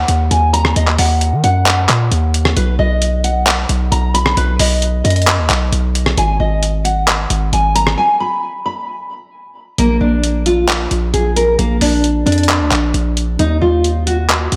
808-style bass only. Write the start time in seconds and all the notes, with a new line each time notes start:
0.08 D#2
0.31 D#2
0.76 D#2
0.99 D#2
1.33 D#3
1.44 F#2
1.89 A#2
2.11 D#2
2.57 B1
2.79 B1
3.69 B1
3.92 B1
4.37 B1
4.60 B1
5.05 F#2
5.39 D#2
5.50 B1
5.72 B1
6.17 G#1
6.40 G#1
7.30 G#1
7.53 G#1
9.78 A#1
10.01 A#1
10.91 A#1
11.14 A#1
11.59 A#1
11.81 A#1
12.26 F2
12.60 D2
12.72 A#1
12.94 A#1
13.39 D#2
13.62 D#2
14.52 D#2